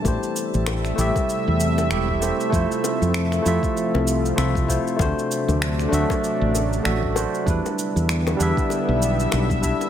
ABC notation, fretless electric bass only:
X:1
M:4/4
L:1/16
Q:"Swing 16ths" 1/4=97
K:Am
V:1 name="Fretless electric bass" clef=bass
A,,, z2 A,,,2 z A,,, z2 E,,3 E,,,2 z2 | F,, z2 F,,2 z F,, z2 C,,2 z C,,2 z2 | D,, z2 D,,2 z D,, z2 A,,,2 z A,,,2 z2 | E,, z2 E,,2 z E,, z2 B,,,2 z B,,,2 z2 |]